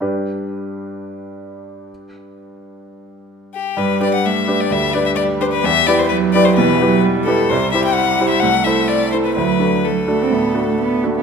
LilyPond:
<<
  \new Staff \with { instrumentName = "Violin" } { \time 4/4 \key g \major \tempo 4 = 128 r1 | r2. r8 g'8 | b'8 d''16 fis''16 e''8. d''16 e''8 d''16 e''16 d''8 c''16 b'16 | e''8 d''16 c''16 b'8 d''16 c''16 b'4 r8 a'8 |
c''8 e''16 g''16 fis''8. e''16 fis''8 e''8 d''8 c''16 b'16 | b'4 a'2~ a'8 r8 | }
  \new Staff \with { instrumentName = "Grand piano" } { \time 4/4 \key g \major <g, d' g' b'>1~ | <g, d' g' b'>1 | g,8 <d' g' b'>4 <d' g' b'>8 d,8 <d' g' b'>4 <d' g' b'>8 | e,8 <e' g' b'>4 <e' g' b'>8 b,8 <e' g' b'>4 <e' g' b'>8 |
c,8 <e' g' c''>4 <e' g' c''>8 c,8 <e' a' c''>4 <e' a' c''>8 | d,8 <d' fis' a'>4 <d' fis' a'>8 a,8 <d' fis' a'>4 <d' fis' a'>8 | }
  \new Staff \with { instrumentName = "Cello" } { \clef bass \time 4/4 \key g \major r1 | r1 | g4 a4 g4 g4~ | g4 fis4 e8 fis8 g4 |
g2 a2 | fis4 fis8 a16 c'16 b8. a16 b8 a16 b16 | }
>>